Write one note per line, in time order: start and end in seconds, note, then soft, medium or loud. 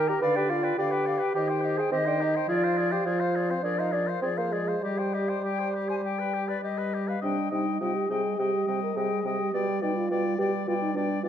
0.00 0.16 D#3 medium
0.00 0.19 A#4 medium
0.08 0.21 G4 medium
0.08 0.21 A#4 soft
0.08 0.21 A#5 soft
0.22 0.72 D3 medium
0.22 0.36 B4 medium
0.22 0.38 D5 medium
0.22 0.78 D5 medium
0.22 0.38 F5 soft
0.36 0.52 G4 medium
0.36 0.52 B4 soft
0.36 0.51 G5 soft
0.50 0.78 F4 medium
0.50 0.65 D5 soft
0.50 0.65 F5 soft
0.64 0.78 B4 soft
0.64 0.78 G5 soft
0.78 1.20 D3 medium
0.78 1.34 G4 medium
0.78 1.37 B4 medium
0.78 0.93 D5 soft
0.78 0.95 F5 soft
0.91 1.08 B4 soft
0.91 1.08 G5 soft
1.06 1.20 D5 soft
1.06 1.24 F5 soft
1.19 1.34 B4 soft
1.19 1.35 G5 soft
1.35 1.85 D#3 medium
1.35 1.50 G4 soft
1.35 1.77 G4 medium
1.35 1.91 C5 medium
1.35 1.52 D#5 soft
1.49 1.63 C5 soft
1.49 1.66 G5 soft
1.61 1.79 G4 soft
1.61 1.81 D#5 soft
1.78 1.91 G#4 medium
1.78 1.91 C5 soft
1.78 1.93 G5 soft
1.92 2.42 D#3 medium
1.92 1.98 C4 medium
1.92 2.07 G4 soft
1.92 2.28 D#5 medium
1.92 2.09 D#5 soft
2.06 2.22 D4 medium
2.06 2.22 C5 soft
2.06 2.24 G5 soft
2.20 2.50 D#4 medium
2.20 2.37 G4 soft
2.20 2.38 D#5 soft
2.36 2.48 C5 soft
2.36 2.50 G5 soft
2.48 2.99 F3 medium
2.48 2.94 F4 medium
2.48 2.65 G#4 soft
2.48 3.02 D5 medium
2.48 2.66 D5 soft
2.63 2.79 C5 soft
2.63 2.81 F5 soft
2.77 2.93 G#4 soft
2.77 2.94 D5 soft
2.91 3.08 G4 medium
2.91 3.06 C5 soft
2.91 3.06 F5 soft
3.06 3.57 F3 soft
3.06 3.49 F4 medium
3.06 3.21 G#4 soft
3.06 3.63 C5 medium
3.06 3.22 D5 soft
3.20 3.37 C5 soft
3.20 3.38 F5 soft
3.36 3.52 G#4 soft
3.36 3.52 D5 soft
3.50 3.62 C4 medium
3.50 3.63 C5 soft
3.50 3.65 F5 soft
3.63 4.15 F3 soft
3.63 3.81 D4 medium
3.63 3.80 G#4 soft
3.63 4.25 A#4 soft
3.63 3.81 D5 soft
3.78 3.92 D#4 medium
3.78 3.93 C5 soft
3.78 3.96 F5 soft
3.92 4.06 D4 soft
3.92 4.08 G#4 soft
3.92 4.11 D5 soft
4.07 4.22 C5 soft
4.07 4.23 F5 soft
4.22 4.75 F3 soft
4.22 4.29 C4 medium
4.22 4.39 G#4 soft
4.22 4.84 G#4 soft
4.22 4.39 D5 soft
4.37 4.54 A#3 soft
4.37 4.54 C5 soft
4.37 4.55 F5 soft
4.52 4.84 G#3 soft
4.52 4.70 G#4 soft
4.52 4.69 D5 soft
4.68 4.83 C5 soft
4.68 4.83 F5 soft
4.82 5.36 G3 soft
4.82 6.63 G3 medium
4.82 6.93 G4 soft
4.82 5.00 G4 soft
4.82 5.00 D#5 soft
4.98 5.15 C5 soft
4.98 5.16 G5 soft
5.14 5.31 G4 soft
5.14 5.30 D#5 soft
5.29 5.44 C5 soft
5.29 5.43 G5 soft
5.42 5.95 G3 soft
5.42 5.61 G4 soft
5.42 5.69 G5 soft
5.59 5.76 C5 soft
5.74 5.90 G4 soft
5.89 6.03 C5 soft
5.89 5.96 G#5 soft
6.02 6.55 G3 soft
6.02 6.21 G4 soft
6.02 6.47 G5 soft
6.19 6.35 B4 soft
6.34 6.50 G4 soft
6.48 6.63 B4 soft
6.48 6.62 D5 soft
6.62 7.16 G3 soft
6.62 6.80 G4 soft
6.62 7.07 D#5 soft
6.78 6.95 B4 soft
6.94 7.10 G4 soft
7.08 7.21 B4 soft
7.08 7.23 F5 soft
7.22 7.36 C3 soft
7.22 7.51 G3 soft
7.22 7.53 D4 medium
7.22 7.51 D#5 soft
7.22 7.52 G5 soft
7.51 7.65 C3 soft
7.51 7.80 G3 soft
7.51 7.82 D#4 soft
7.51 7.80 D#5 soft
7.51 7.81 G5 soft
7.81 7.94 C3 soft
7.81 8.08 G3 soft
7.81 7.97 F4 soft
7.81 8.09 D#5 soft
7.81 8.09 G5 soft
7.96 8.11 G4 soft
8.09 8.23 C3 soft
8.09 8.37 G3 soft
8.09 8.40 G#4 medium
8.09 8.38 D#5 soft
8.09 8.38 G5 soft
8.38 8.52 C3 soft
8.38 8.66 G3 soft
8.38 8.82 G4 medium
8.38 8.67 D#5 soft
8.38 8.66 G5 soft
8.66 8.81 C3 soft
8.66 8.93 G3 soft
8.66 8.96 D#5 soft
8.66 8.95 G5 soft
8.83 8.98 A#4 soft
8.94 9.09 C3 soft
8.94 9.23 G3 soft
8.94 9.27 G#4 soft
8.94 9.24 D#5 soft
8.94 9.23 G5 soft
9.24 9.38 C3 soft
9.24 9.52 G3 soft
9.24 9.53 D#5 soft
9.24 9.52 G5 soft
9.40 9.84 G4 soft
9.53 9.66 B2 soft
9.53 9.81 G3 soft
9.53 9.81 D5 soft
9.53 9.81 G5 soft
9.81 9.95 B2 soft
9.81 10.10 G3 soft
9.81 9.95 D#4 soft
9.81 10.10 D5 soft
9.81 10.10 G5 soft
9.96 10.38 F4 medium
10.10 10.23 B2 soft
10.10 10.38 G3 soft
10.10 10.38 D5 soft
10.10 10.38 G5 soft
10.38 10.51 B2 soft
10.38 10.67 G3 soft
10.38 10.51 G4 medium
10.38 10.67 D5 soft
10.38 10.67 G5 soft
10.67 10.80 B2 soft
10.67 10.95 G3 soft
10.67 10.74 F4 medium
10.67 10.96 D5 soft
10.67 10.95 G5 soft
10.82 10.94 D#4 soft
10.94 11.08 B2 soft
10.94 11.24 G3 soft
10.94 11.23 D4 medium
10.94 11.24 D5 soft
10.94 11.23 G5 soft
11.23 11.29 B2 soft
11.23 11.29 G3 soft
11.23 11.29 F4 medium
11.23 11.29 D5 soft
11.23 11.29 G5 soft